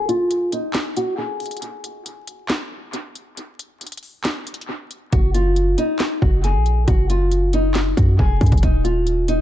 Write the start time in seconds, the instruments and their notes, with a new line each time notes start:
0.08 nylon-string guitar F4, closed hi-hat
0.31 closed hi-hat
0.52 nylon-string guitar D#4, closed hi-hat
0.74 snare, clap, closed hi-hat
0.97 nylon-string guitar F#4, closed hi-hat
1.18 nylon-string guitar G#4
1.40 closed hi-hat, open hi-hat
1.46 closed hi-hat
1.51 closed hi-hat
1.57 closed hi-hat
1.62 closed hi-hat
1.84 closed hi-hat
2.06 closed hi-hat
2.27 closed hi-hat
2.49 snare, clap, closed hi-hat
2.93 closed hi-hat
3.15 closed hi-hat
3.37 closed hi-hat
3.59 closed hi-hat
3.81 closed hi-hat
3.87 closed hi-hat
3.92 closed hi-hat
3.97 closed hi-hat
4.03 open hi-hat
4.24 snare, clap, closed hi-hat
4.47 closed hi-hat
4.54 closed hi-hat
4.61 closed hi-hat
4.91 closed hi-hat
5.12 808-style bass F#1, nylon-string guitar F#4, kick, closed hi-hat
5.34 nylon-string guitar F4, closed hi-hat
5.56 closed hi-hat
5.78 nylon-string guitar D#4, closed hi-hat
5.99 snare, clap, closed hi-hat
6.22 808-style bass F#1, nylon-string guitar F#4, kick
6.44 nylon-string guitar G#4, closed hi-hat
6.55 808-style bass A#1
6.66 closed hi-hat
6.87 808-style bass F#1, nylon-string guitar F#4, kick, closed hi-hat
7.10 nylon-string guitar F4, closed hi-hat
7.32 closed hi-hat
7.53 nylon-string guitar D#4, closed hi-hat
7.74 snare, clap, closed hi-hat
7.97 808-style bass F#2, nylon-string guitar F#4, kick, closed hi-hat
8.19 808-style bass F1, nylon-string guitar G#4, kick
8.41 808-style bass F#2, kick, closed hi-hat, open hi-hat
8.46 closed hi-hat
8.52 808-style bass F#1, kick, closed hi-hat
8.57 closed hi-hat
8.63 808-style bass D#1, nylon-string guitar D#4, kick, closed hi-hat
8.84 nylon-string guitar F4, closed hi-hat
9.07 closed hi-hat
9.28 nylon-string guitar D#4, closed hi-hat